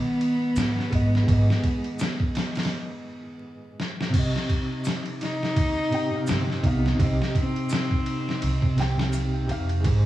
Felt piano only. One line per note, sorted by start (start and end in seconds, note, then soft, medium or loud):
0.00 0.86 G#3 medium
0.00 0.87 G#4 medium
0.00 0.89 B4 medium
0.90 1.22 G#3 medium
0.90 1.24 G#4 medium
0.90 1.25 B4 medium
0.95 1.25 D#5 medium
1.23 2.68 G#3 medium
1.23 2.70 G#4 medium
1.29 2.71 B4 medium
1.29 2.73 D#5 medium
4.09 5.87 C3 medium
4.09 5.88 C4 medium
4.15 5.90 G4 medium
4.15 5.92 D#5 medium
5.90 6.06 C3 medium
5.90 6.07 C4 medium
5.90 6.08 G4 medium
5.94 6.09 G5 loud
6.10 6.59 C3 medium
6.10 6.59 C4 medium
6.10 6.60 G4 medium
6.15 6.61 F5 medium
6.62 6.93 C3 medium
6.62 6.95 D#4 medium
6.62 6.96 G4 medium
6.66 6.97 F5 loud
6.94 8.72 C3 medium
6.94 8.74 C4 medium
7.01 8.75 G4 medium
7.01 8.77 D#5 medium
8.75 8.92 C3 medium
8.75 8.93 C4 medium
8.75 8.94 G4 medium
8.80 8.94 G5 medium
8.96 9.44 C3 medium
8.96 9.45 C4 medium
8.96 9.46 G4 medium
9.01 9.47 F5 medium
9.47 9.80 C3 loud
9.47 9.80 C4 medium
9.47 9.81 G4 medium
9.51 9.82 F5 loud
9.80 10.06 G#3 medium
9.80 10.06 G#4 medium
9.87 10.06 C5 medium